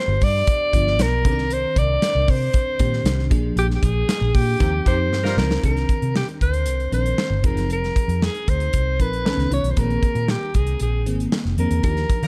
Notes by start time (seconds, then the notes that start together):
Already playing: F3 B3 D4 G4
0.00 C5
0.08 G1
0.21 G2 D5, kick, open hi-hat
0.47 kick, closed hi-hat
0.73 G1 F3 B3 D4 F4, kick, closed hi-hat
0.87 snare
0.99 B1 A#4, snare, closed hi-hat
1.25 C2 D#3 C4 D4 A4, kick, closed hi-hat
1.32 A#4
1.38 snare
1.50 C5, closed hi-hat
1.76 C2 D5, kick, closed hi-hat
2.02 snare, closed hi-hat
2.15 C2
2.28 C3 C5, kick, open hi-hat
2.53 kick, closed hi-hat
2.79 A#2 D#3 C4 D4 G4, kick, closed hi-hat
2.93 snare
3.04 C2, snare, closed hi-hat
3.19 snare
3.30 A#1 F3 A#3 D4 G#4, kick, closed hi-hat
3.56 A#1 G4, closed hi-hat
3.71 snare
3.76 G4
3.83 A#1 G#4, kick, closed hi-hat
4.09 snare, closed hi-hat
4.21 A#1
4.35 A#2 G4, kick, open hi-hat
4.60 D#2 C3 F3 A#3 C4 D#4 G4, kick, closed hi-hat
4.85 F2 C3 F3 A#3 C4 D#4 G4 C5, kick, closed hi-hat
5.11 G2, snare
5.24 G3 F4 A#4, snare
5.37 C#2 F3 C4 D#4 A#4, snare
5.51 snare
5.63 C2 D#3 C4 D4 G#4 A#4, kick, closed hi-hat
5.71 A#4
5.77 snare, closed hi-hat
5.89 kick, closed hi-hat
6.02 C3, closed hi-hat
6.16 G4, snare
6.28 closed hi-hat
6.41 D2 C5, kick, closed hi-hat
6.54 closed hi-hat
6.66 C2, closed hi-hat
6.80 closed hi-hat
6.92 A#1 D#3 C4 D4 A#4 C5, closed hi-hat
7.06 closed hi-hat
7.18 snare
7.30 G1
7.43 F1 F3 C4 D#4 G#4 A#4, kick, closed hi-hat
7.55 F#1, snare, closed hi-hat
7.69 F1 A#4, closed hi-hat
7.84 snare, closed hi-hat
7.96 kick, closed hi-hat
8.08 F2, closed hi-hat
8.22 G#4, snare
8.34 closed hi-hat
8.48 D2 C5, kick, closed hi-hat
8.60 closed hi-hat
8.73 C2, kick, closed hi-hat
8.99 A#1 F3 C4 D#4 A#4 B4, kick, closed hi-hat
9.13 closed hi-hat
9.25 B1 D#3 B3 C#4 A4, snare
9.38 C#2, snare, closed hi-hat
9.51 C2 D#3 B3 C#4 F4 C#5, closed hi-hat
9.63 B1, closed hi-hat
9.71 C5
9.77 A#1 D#3 A#3 C4 G#4 A#4, kick, closed hi-hat
9.90 closed hi-hat
10.03 kick, closed hi-hat
10.15 A#2, closed hi-hat
10.28 G4, snare
10.54 C2 G#4, kick, closed hi-hat
10.67 closed hi-hat
10.80 A#1 G#4, closed hi-hat
11.06 G#1 D#3 A#3 C4 G#4, closed hi-hat
11.20 closed hi-hat
11.32 snare
11.45 F1, snare
11.58 F2 D#3 A#3 C4 D4 A#4, closed hi-hat
11.71 E2, closed hi-hat
11.83 D#2 F3 D4 D#4 G4 A#4, kick, closed hi-hat
11.97 snare, closed hi-hat
12.10 kick, closed hi-hat
12.22 D#3 G3 F4 A#4, closed hi-hat